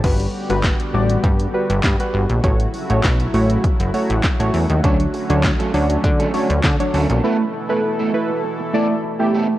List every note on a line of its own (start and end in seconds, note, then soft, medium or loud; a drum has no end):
0.04 0.27 G1 loud
0.04 2.41 D3 medium
0.04 0.25 G3 medium
0.04 2.41 G3 medium
0.04 2.41 B3 medium
0.04 7.20 F#4 medium
0.04 0.25 F#4 medium
0.04 2.41 G4 medium
0.04 0.26 B4 medium
0.04 kick loud
0.04 closed hi-hat medium
0.04 crash medium
0.20 closed hi-hat medium
0.50 0.73 G1 medium
0.50 0.70 G3 medium
0.50 0.70 F#4 medium
0.50 0.70 B4 medium
0.50 closed hi-hat medium
0.64 kick loud
0.64 snare loud
0.64 clap loud
0.64 closed hi-hat medium
0.80 closed hi-hat soft
0.94 1.17 A1 medium
0.94 1.22 G3 medium
0.94 1.22 F#4 medium
0.94 1.22 D5 medium
1.10 closed hi-hat medium
1.24 1.47 G2 loud
1.24 kick loud
1.24 closed hi-hat medium
1.40 closed hi-hat medium
1.54 1.75 G3 medium
1.54 1.75 F#4 medium
1.54 1.76 B4 loud
1.70 1.81 G1 medium
1.70 closed hi-hat medium
1.84 1.96 G2 loud
1.84 kick loud
1.84 snare loud
1.84 clap loud
1.84 closed hi-hat medium
2.00 2.20 G3 medium
2.00 2.20 F#4 medium
2.00 2.20 B4 medium
2.00 closed hi-hat medium
2.14 2.26 G1 loud
2.30 2.41 A#1 medium
2.30 closed hi-hat soft
2.44 4.82 C#3 medium
2.44 7.20 F#3 medium
2.44 2.65 A3 medium
2.44 9.59 A3 medium
2.44 4.82 E4 medium
2.44 2.65 F#4 medium
2.44 2.65 C#5 medium
2.44 kick loud
2.44 closed hi-hat medium
2.60 closed hi-hat medium
2.74 open hi-hat medium
2.90 3.01 A1 loud
2.90 3.10 A3 medium
2.90 3.10 F#4 medium
2.90 3.10 C#5 medium
2.90 closed hi-hat medium
3.04 3.27 B1 loud
3.04 kick loud
3.04 snare loud
3.04 clap loud
3.04 closed hi-hat medium
3.20 closed hi-hat medium
3.34 3.57 A1 loud
3.34 3.62 A3 medium
3.34 3.62 F#4 medium
3.34 3.62 C#5 medium
3.34 open hi-hat medium
3.50 closed hi-hat medium
3.64 kick loud
3.64 closed hi-hat medium
3.80 3.91 F#1 medium
3.80 closed hi-hat medium
3.94 4.15 A3 medium
3.94 4.15 F#4 medium
3.94 4.15 C#5 loud
3.94 open hi-hat medium
4.10 4.21 A1 medium
4.10 closed hi-hat medium
4.24 kick loud
4.24 snare medium
4.24 clap loud
4.24 closed hi-hat medium
4.39 4.51 A1 medium
4.39 4.60 A3 medium
4.39 4.60 F#4 medium
4.39 4.60 C#5 loud
4.39 closed hi-hat medium
4.54 4.66 E2 medium
4.54 open hi-hat medium
4.70 4.81 D#2 medium
4.70 closed hi-hat soft
4.84 5.07 D2 medium
4.84 7.21 D3 medium
4.84 5.03 F#3 medium
4.84 5.05 F#3 medium
4.84 4.99 A3 medium
4.84 7.21 C#4 medium
4.84 4.99 C#4 medium
4.84 5.05 D4 medium
4.84 4.98 A4 medium
4.84 5.05 C#5 loud
4.84 kick loud
4.84 closed hi-hat medium
4.99 muted clean electric guitar stroke soft
4.99 closed hi-hat medium
5.14 muted clean electric guitar stroke soft
5.14 open hi-hat medium
5.29 5.53 D2 loud
5.29 5.50 F#3 medium
5.29 5.42 F#3 soft
5.29 5.43 A3 medium
5.29 5.43 C#4 medium
5.29 5.50 D4 medium
5.29 5.43 A4 medium
5.29 5.50 C#5 medium
5.29 closed hi-hat medium
5.44 muted clean electric guitar stroke medium
5.44 kick loud
5.44 snare loud
5.44 clap loud
5.44 closed hi-hat medium
5.59 5.72 F#3 medium
5.59 5.73 A3 medium
5.59 5.73 C#4 medium
5.59 5.73 A4 medium
5.59 closed hi-hat medium
5.74 5.97 D2 medium
5.74 6.02 F#3 medium
5.74 6.02 D4 medium
5.74 6.02 C#5 medium
5.74 muted clean electric guitar stroke soft
5.74 open hi-hat medium
5.89 muted clean electric guitar stroke medium
5.89 closed hi-hat medium
6.04 6.27 D3 loud
6.04 muted clean electric guitar stroke soft
6.04 kick loud
6.04 closed hi-hat medium
6.19 6.32 F#3 medium
6.19 6.33 A3 medium
6.19 6.33 C#4 medium
6.19 6.33 A4 medium
6.19 closed hi-hat medium
6.33 6.49 F#3 medium
6.33 6.55 F#3 medium
6.33 6.49 A3 medium
6.33 6.49 C#4 medium
6.33 6.55 D4 medium
6.33 6.48 A4 medium
6.33 6.55 C#5 medium
6.33 open hi-hat medium
6.49 6.61 D2 medium
6.49 muted clean electric guitar stroke medium
6.49 closed hi-hat medium
6.64 6.76 D3 loud
6.64 muted clean electric guitar stroke soft
6.64 kick loud
6.64 snare loud
6.64 clap loud
6.64 closed hi-hat medium
6.79 7.00 F#3 medium
6.79 7.00 D4 medium
6.79 7.00 C#5 medium
6.79 muted clean electric guitar stroke soft
6.79 closed hi-hat medium
6.93 7.06 D2 medium
6.93 7.09 F#3 loud
6.93 7.09 A3 medium
6.93 7.09 C#4 loud
6.93 7.08 A4 loud
6.93 open hi-hat medium
7.09 7.21 A#1 medium
7.09 7.23 F#3 medium
7.09 7.22 A3 medium
7.09 7.24 C#4 medium
7.09 7.23 A4 medium
7.09 closed hi-hat soft
7.23 9.59 B2 medium
7.23 9.59 E3 medium
7.23 7.43 A3 medium
7.23 7.45 A3 medium
7.23 7.39 B3 medium
7.23 9.59 E4 medium
7.23 7.45 E4 medium
7.23 7.39 E4 medium
7.23 9.59 A4 medium
7.23 7.38 A4 medium
7.23 7.45 B4 medium
7.40 muted clean electric guitar stroke soft
7.54 muted clean electric guitar stroke medium
7.69 7.90 A3 medium
7.69 7.82 A3 medium
7.69 7.83 B3 medium
7.69 7.90 E4 medium
7.69 7.83 E4 medium
7.69 7.83 A4 medium
7.69 7.90 B4 loud
7.84 muted clean electric guitar stroke soft
7.99 8.12 A3 medium
7.99 8.13 B3 medium
7.99 8.13 E4 medium
7.99 8.13 A4 medium
8.14 8.42 A3 medium
8.14 8.42 E4 medium
8.14 8.42 B4 medium
8.14 muted clean electric guitar stroke soft
8.30 muted clean electric guitar stroke medium
8.44 muted clean electric guitar stroke medium
8.60 muted clean electric guitar stroke medium
8.73 8.93 A3 medium
8.73 8.95 A3 medium
8.73 8.89 B3 medium
8.73 8.95 E4 medium
8.73 8.89 E4 medium
8.73 8.88 A4 loud
8.73 8.95 D5 loud
8.90 muted clean electric guitar stroke soft
9.04 muted clean electric guitar stroke soft
9.20 9.40 A3 medium
9.20 9.32 A3 medium
9.20 9.33 B3 medium
9.20 9.40 E4 medium
9.20 9.33 E4 medium
9.20 9.40 G4 loud
9.20 9.33 A4 medium
9.33 9.53 A3 medium
9.33 9.49 B3 medium
9.33 9.49 E4 medium
9.33 9.48 A4 medium
9.50 muted clean electric guitar stroke soft